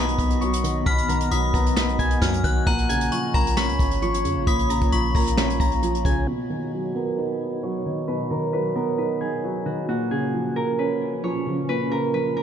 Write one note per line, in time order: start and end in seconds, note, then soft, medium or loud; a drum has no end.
0.00 0.17 B1 loud
0.00 0.19 B2 medium
0.00 0.41 D#3 medium
0.00 0.40 F#3 medium
0.00 0.86 B3 loud
0.00 2.63 B3 medium
0.00 1.09 D#4 medium
0.00 2.63 F#4 medium
0.00 2.63 D#5 medium
0.00 0.67 F#5 loud
0.00 0.78 G#5 medium
0.00 0.86 B5 medium
0.00 0.82 D#6 medium
0.08 closed hi-hat medium
0.19 0.84 B1 loud
0.19 kick medium
0.19 closed hi-hat medium
0.30 closed hi-hat medium
0.41 1.30 F#3 medium
0.41 1.67 C#6 medium
0.41 closed hi-hat soft
0.53 closed hi-hat medium
0.64 1.07 D#3 medium
0.64 closed hi-hat medium
0.86 1.30 B1 loud
0.86 1.99 B2 medium
0.86 1.15 B5 loud
0.86 1.29 F6 loud
0.86 kick loud
0.86 closed hi-hat medium
0.98 closed hi-hat medium
1.09 2.21 D#3 medium
1.09 1.37 A#5 medium
1.09 closed hi-hat medium
1.20 closed hi-hat medium
1.31 1.53 B1 loud
1.31 2.20 F#3 medium
1.31 1.60 B5 medium
1.31 2.18 D#6 medium
1.31 closed hi-hat medium
1.54 1.97 B1 loud
1.54 2.67 B3 loud
1.54 1.82 A#5 medium
1.54 kick loud
1.54 closed hi-hat medium
1.66 closed hi-hat medium
1.76 2.67 D#4 medium
1.76 3.12 B5 medium
1.76 snare loud
1.89 closed hi-hat medium
1.99 2.21 B1 loud
1.99 2.89 G#5 medium
1.99 kick medium
1.99 closed hi-hat medium
2.10 closed hi-hat medium
2.22 2.43 F#2 loud
2.22 2.67 F#3 medium
2.22 2.43 F6 medium
2.22 kick loud
2.22 snare medium
2.34 closed hi-hat medium
2.44 2.66 B1 loud
2.44 2.67 D#3 medium
2.44 2.66 F#5 medium
2.44 2.66 F#6 medium
2.44 kick loud
2.44 closed hi-hat medium
2.67 3.10 A#1 loud
2.67 3.79 A#2 medium
2.67 6.24 A#3 medium
2.67 6.24 F4 medium
2.67 6.24 C#5 medium
2.67 4.27 F#5 loud
2.67 3.09 A#5 loud
2.67 kick loud
2.67 closed hi-hat medium
2.78 closed hi-hat medium
2.89 4.02 C#3 medium
2.89 4.39 G#5 medium
2.89 closed hi-hat medium
3.01 closed hi-hat medium
3.12 4.01 F3 medium
3.12 3.33 C#6 medium
3.12 closed hi-hat medium
3.34 3.71 A#1 loud
3.34 4.47 A#3 medium
3.34 3.63 A#5 loud
3.34 3.56 B5 medium
3.34 kick loud
3.34 closed hi-hat medium
3.47 closed hi-hat medium
3.57 4.70 C#4 medium
3.57 4.47 B5 medium
3.57 4.43 C#6 medium
3.57 snare loud
3.69 3.79 C#2 loud
3.69 closed hi-hat medium
3.79 4.26 G#1 loud
3.79 kick medium
3.79 closed hi-hat medium
3.91 closed hi-hat medium
4.02 4.91 F3 loud
4.02 5.28 C#6 medium
4.02 closed hi-hat soft
4.14 closed hi-hat medium
4.25 4.38 F2 loud
4.25 4.68 C#3 medium
4.25 closed hi-hat medium
4.37 4.47 G#1 loud
4.47 4.71 A#1 loud
4.47 5.60 A#2 medium
4.47 4.76 B5 loud
4.47 4.90 D#6 medium
4.47 kick loud
4.47 closed hi-hat medium
4.59 closed hi-hat medium
4.70 4.81 B1 loud
4.70 5.82 C#3 medium
4.70 4.98 A#5 medium
4.70 closed hi-hat medium
4.81 4.92 A#1 loud
4.81 kick loud
4.81 closed hi-hat medium
4.92 5.14 A#1 loud
4.92 5.81 F3 medium
4.92 5.21 B5 medium
4.92 5.79 C#6 medium
4.92 closed hi-hat medium
5.15 5.58 A#1 loud
5.15 6.28 A#3 medium
5.15 5.43 A#5 medium
5.15 kick loud
5.15 open hi-hat medium
5.27 closed hi-hat medium
5.37 6.28 C#4 medium
5.37 5.66 B5 medium
5.37 snare loud
5.50 closed hi-hat medium
5.60 6.03 A#1 loud
5.60 7.00 A#5 medium
5.60 kick medium
5.60 closed hi-hat medium
5.71 closed hi-hat medium
5.82 6.28 F3 loud
5.82 closed hi-hat medium
5.95 closed hi-hat soft
6.05 6.27 A#1 loud
6.05 6.28 C#3 medium
6.05 7.55 G#5 medium
6.05 kick loud
6.05 closed hi-hat medium
6.28 7.40 B2 medium
6.28 9.85 B2 medium
6.28 9.85 F#3 medium
6.28 9.85 D#4 medium
6.28 8.71 F#4 loud
6.50 7.63 D#3 medium
6.50 8.78 G#4 medium
6.73 7.62 F#3 medium
6.95 8.08 B3 medium
6.95 7.24 A#4 medium
7.18 8.31 D#4 medium
7.18 8.07 B4 medium
7.63 8.52 F#3 medium
7.63 9.54 C#5 medium
7.86 8.29 D#3 medium
8.08 9.21 B2 medium
8.08 8.36 B4 loud
8.30 9.43 D#3 medium
8.30 8.59 A#4 medium
8.53 9.42 F#3 medium
8.53 8.81 B4 medium
8.75 9.89 B3 medium
8.75 9.04 A#4 medium
8.98 9.88 D#4 medium
8.98 10.62 B4 medium
9.21 10.11 G#4 medium
9.44 9.89 F#3 medium
9.66 9.88 D#3 medium
9.66 9.88 F#4 medium
9.88 11.01 A#2 medium
9.88 12.43 A#2 medium
9.88 12.43 F3 medium
9.88 12.43 C#4 medium
9.88 12.32 F#4 loud
10.11 11.24 C#3 medium
10.11 12.38 G#4 medium
10.34 11.22 F3 medium
10.56 10.85 A#4 medium
10.79 11.92 C#4 medium
10.79 11.68 B4 medium
11.24 12.13 F3 medium
11.24 12.43 C#5 medium
11.46 11.90 C#3 medium
11.69 12.43 A#2 medium
11.69 11.97 B4 loud
11.91 12.43 C#3 medium
11.91 12.20 A#4 medium
12.14 12.43 F3 medium
12.14 12.43 B4 medium
12.37 12.43 A#3 medium
12.37 12.43 A#4 medium